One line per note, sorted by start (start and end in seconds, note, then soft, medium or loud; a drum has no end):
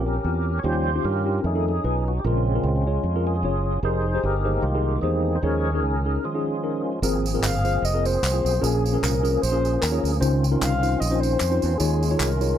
0.00 0.18 A#1 medium
0.00 0.15 C4 medium
0.00 0.15 C#4 medium
0.00 0.15 F4 medium
0.00 0.15 A#4 medium
0.06 0.60 C#4 medium
0.06 0.60 G4 medium
0.06 0.60 A#4 medium
0.24 0.58 E2 medium
0.24 0.52 C4 medium
0.24 0.52 C#4 medium
0.24 0.52 F4 soft
0.24 0.52 G4 medium
0.59 0.64 C#5 medium
0.63 0.98 D#2 medium
0.63 1.22 D#3 medium
0.63 0.91 F3 soft
0.63 0.91 G3 soft
0.63 0.86 C#4 medium
0.63 0.92 C#4 medium
0.63 0.86 D#4 medium
0.63 0.86 F4 medium
0.63 1.40 F4 medium
0.63 1.03 G4 medium
0.63 0.86 G4 medium
0.63 1.05 C5 loud
0.95 1.14 C#4 medium
0.95 1.15 D#4 medium
0.95 1.15 F4 medium
0.95 1.15 G4 medium
1.04 1.38 G2 medium
1.04 1.41 C#4 medium
1.04 1.41 G4 medium
1.04 1.45 A#4 medium
1.25 1.43 C#4 medium
1.25 1.43 D#4 medium
1.25 1.43 F4 medium
1.25 1.43 G4 medium
1.44 1.78 F2 medium
1.44 1.72 D#3 soft
1.44 1.72 A3 soft
1.44 1.67 C#4 soft
1.44 1.67 D#4 medium
1.44 1.66 G#4 medium
1.55 1.74 C#4 medium
1.55 1.75 D#4 medium
1.55 1.75 F4 medium
1.55 1.75 A4 medium
1.68 2.21 C#4 medium
1.68 2.21 D#4 medium
1.68 2.05 G#4 medium
1.84 2.18 B1 medium
1.84 2.12 C#4 medium
1.84 2.11 D#4 medium
1.84 2.12 F4 medium
1.84 2.12 B4 medium
2.08 2.19 F#4 medium
2.19 2.24 G4 medium
2.24 2.58 A#1 loud
2.24 2.82 A#2 medium
2.24 2.84 C#3 soft
2.24 2.66 G#3 medium
2.24 2.84 C4 medium
2.24 2.46 C#4 medium
2.24 2.65 C#4 medium
2.24 2.46 F4 medium
2.24 2.66 F4 medium
2.24 2.46 G#4 medium
2.24 2.46 A#4 medium
2.55 2.74 C#4 medium
2.55 2.75 F4 medium
2.55 2.75 G#4 medium
2.55 2.75 A#4 medium
2.63 2.97 C#2 medium
2.63 3.41 G#3 medium
2.63 3.26 C#4 medium
2.63 3.26 F4 medium
2.87 3.04 C#4 medium
2.87 3.04 F4 medium
2.87 3.04 G#4 medium
2.87 3.04 C#5 medium
3.03 3.44 F2 medium
3.15 3.35 C#4 medium
3.15 3.35 F4 medium
3.15 3.35 G#4 medium
3.15 3.35 A#4 medium
3.27 3.80 C#4 medium
3.27 3.80 F4 medium
3.27 3.80 G#4 medium
3.43 3.77 F#1 medium
3.43 3.71 C#4 medium
3.43 3.72 F4 medium
3.43 3.72 G#4 medium
3.43 3.72 C#5 medium
3.83 4.17 F1 medium
3.83 4.05 D#4 medium
3.83 4.24 D#4 medium
3.83 4.05 G4 medium
3.83 4.05 G#4 medium
3.83 4.60 G#4 medium
3.83 4.05 A#4 medium
3.83 4.25 C5 loud
4.14 4.34 D#4 medium
4.14 4.34 G4 medium
4.14 4.34 G#4 medium
4.14 4.34 C5 medium
4.23 4.57 G1 medium
4.23 5.00 D#4 medium
4.23 5.00 G4 medium
4.23 4.65 A#4 medium
4.44 5.38 D#3 soft
4.44 4.60 G#3 soft
4.44 4.61 A#3 soft
4.44 4.63 D#4 medium
4.44 4.63 G4 medium
4.44 4.63 G#4 medium
4.44 4.63 C5 medium
4.61 4.97 C2 medium
4.61 5.38 G#3 medium
4.61 5.39 A#3 medium
4.61 5.00 F4 medium
4.75 4.94 D#4 medium
4.75 4.94 G4 medium
4.75 4.94 G#4 medium
4.75 4.94 A#4 medium
5.01 5.37 E2 medium
5.01 5.39 C4 medium
5.01 5.40 D#4 medium
5.01 5.31 D#4 medium
5.01 5.31 G4 medium
5.01 5.37 G#4 medium
5.01 5.31 G#4 medium
5.01 5.31 C5 medium
5.35 5.42 C5 medium
5.42 5.82 D#2 medium
5.42 6.02 D#3 medium
5.42 5.70 F3 medium
5.42 5.71 G#3 soft
5.42 5.71 C#4 medium
5.42 5.65 C#4 medium
5.42 5.65 D#4 medium
5.42 6.19 G#4 medium
5.42 5.65 G#4 medium
5.42 5.83 A#4 medium
5.42 5.66 A#4 medium
5.42 5.80 C#5 medium
5.74 5.94 C#4 medium
5.74 5.94 D#4 medium
5.74 5.94 G#4 medium
5.74 5.94 A#4 medium
5.82 6.17 C#2 medium
5.82 6.20 C#4 medium
5.82 6.24 A#4 medium
6.06 6.23 C#4 medium
6.06 6.23 D#4 medium
6.06 6.23 G#4 medium
6.06 6.23 A#4 medium
6.24 6.82 D#3 medium
6.24 6.99 F3 soft
6.24 6.99 G#3 soft
6.24 7.00 C#4 medium
6.24 7.00 F4 soft
6.24 6.82 G#4 medium
6.34 6.54 C#4 medium
6.34 6.54 D#4 medium
6.34 6.54 F4 medium
6.34 6.54 G#4 medium
6.64 6.91 C#4 medium
6.64 6.91 D#4 medium
6.64 6.91 F4 medium
6.64 6.91 A#4 medium
7.02 7.36 G#1 medium
7.02 7.61 G#2 medium
7.02 10.18 F3 medium
7.02 8.60 A#3 medium
7.02 7.24 C4 medium
7.02 8.61 C4 medium
7.02 7.24 F4 medium
7.02 7.25 G#4 medium
7.02 10.18 G#4 medium
7.02 7.25 A#4 loud
7.02 tambourine medium
7.26 tambourine medium
7.34 7.54 C4 medium
7.34 7.53 F4 medium
7.34 7.54 G#4 medium
7.34 7.54 A#4 medium
7.43 7.77 G1 loud
7.43 7.86 F5 loud
7.43 clap medium
7.43 tambourine medium
7.64 7.82 C4 medium
7.64 7.82 F4 medium
7.64 7.82 G#4 medium
7.64 7.82 C5 medium
7.64 tambourine soft
7.82 8.16 F1 medium
7.82 8.07 D#5 loud
7.82 tambourine medium
7.93 8.19 C4 medium
7.93 8.19 F4 medium
7.93 8.19 G#4 medium
7.93 8.19 A#4 medium
8.05 8.65 C5 medium
8.05 tambourine medium
8.23 8.41 C2 medium
8.23 clap medium
8.23 tambourine medium
8.33 8.53 C4 medium
8.33 8.53 F4 medium
8.33 8.53 G#4 medium
8.33 8.53 C5 medium
8.45 8.59 B1 medium
8.45 tambourine medium
8.61 8.96 A#1 loud
8.61 9.19 A#2 medium
8.61 10.19 A#3 medium
8.61 12.58 C#4 medium
8.61 8.83 C#4 medium
8.61 8.83 F4 medium
8.61 8.83 G#4 medium
8.61 9.04 G#4 medium
8.61 8.84 A#4 medium
8.61 tambourine medium
8.86 tambourine medium
8.93 9.12 C#4 medium
8.93 9.13 F4 medium
8.93 9.13 G#4 medium
8.93 9.13 A#4 medium
9.03 9.36 C2 medium
9.03 9.41 A#4 medium
9.03 clap medium
9.03 tambourine medium
9.23 9.41 C#4 medium
9.23 9.41 F4 medium
9.23 9.41 G#4 medium
9.23 9.41 A#4 medium
9.23 tambourine medium
9.42 9.76 A#1 loud
9.42 9.83 C5 loud
9.42 tambourine medium
9.52 9.78 C#4 medium
9.52 9.78 F4 medium
9.52 9.78 G#4 medium
9.52 9.78 A#4 medium
9.65 tambourine soft
9.81 10.01 D#2 medium
9.81 10.12 A#4 medium
9.81 clap medium
9.81 tambourine medium
9.92 10.12 C#4 medium
9.92 10.12 F4 medium
9.92 10.12 G#4 medium
9.92 10.12 C#5 medium
10.04 10.19 D2 medium
10.04 tambourine medium
10.20 10.55 C#2 loud
10.20 10.78 C#3 medium
10.20 12.58 D#3 medium
10.20 11.78 C4 medium
10.20 10.42 C#4 medium
10.20 10.43 D#4 medium
10.20 10.42 F4 medium
10.20 11.78 F4 medium
10.20 10.43 C5 loud
10.20 tambourine medium
10.44 tambourine medium
10.52 10.71 C#4 medium
10.52 10.71 D#4 medium
10.52 10.71 F4 medium
10.52 10.71 A#4 medium
10.61 10.95 C2 medium
10.61 11.01 F5 loud
10.61 clap loud
10.61 tambourine medium
10.82 11.00 C#4 medium
10.82 11.00 D#4 medium
10.82 11.00 F4 medium
10.82 11.00 C5 medium
10.82 tambourine medium
11.00 11.35 A#1 loud
11.00 11.22 D#5 loud
11.00 tambourine medium
11.10 11.36 C#4 medium
11.10 11.37 D#4 medium
11.10 11.37 F4 medium
11.10 11.37 C5 medium
11.20 11.79 C5 medium
11.20 tambourine medium
11.40 11.59 F2 medium
11.40 clap medium
11.40 tambourine medium
11.51 11.71 C#4 medium
11.51 11.71 D#4 medium
11.51 11.71 F4 medium
11.51 11.71 C5 medium
11.62 11.78 E2 medium
11.62 tambourine medium
11.78 12.14 D#2 loud
11.78 12.38 D#3 medium
11.78 12.58 G#3 medium
11.78 12.01 D#4 medium
11.78 12.02 F4 medium
11.78 12.58 F4 medium
11.78 12.20 G#4 loud
11.78 12.02 G#4 medium
11.78 12.02 C#5 medium
11.78 tambourine medium
12.03 tambourine medium
12.11 12.30 D#4 medium
12.11 12.30 F4 medium
12.11 12.30 G#4 medium
12.11 12.31 C#5 medium
12.18 12.53 C2 medium
12.18 12.58 A#4 medium
12.18 clap medium
12.18 tambourine medium
12.40 12.58 D#4 medium
12.40 12.58 F4 medium
12.40 12.58 G#4 medium
12.40 12.58 C#5 medium
12.40 tambourine soft